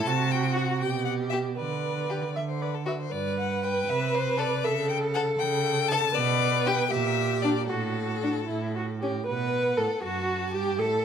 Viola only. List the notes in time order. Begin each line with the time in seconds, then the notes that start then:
0.08 F#4
0.82 G4
1.59 B4
2.36 E5
2.62 D5
2.88 E5
3.13 B4
4.64 A4
6.15 B4
6.91 G4
7.70 F#4
8.48 E4
8.76 F#4
9.01 G4
9.26 B4
9.77 A4
10.03 F#4
10.54 G4
10.79 A4